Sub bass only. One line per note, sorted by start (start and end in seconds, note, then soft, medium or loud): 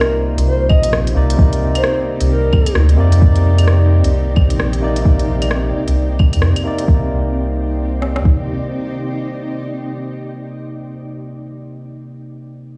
0.00 0.37 C2 loud
0.38 0.69 C2 loud
0.70 1.15 A#1 loud
1.16 1.74 C2 loud
2.21 2.52 C2 loud
2.75 2.97 D2 medium
2.98 4.02 F2 medium
4.04 4.35 C2 loud
4.37 5.73 A#1 medium
5.87 6.35 C2 medium
6.33 6.54 F2 medium
6.88 8.22 C2 medium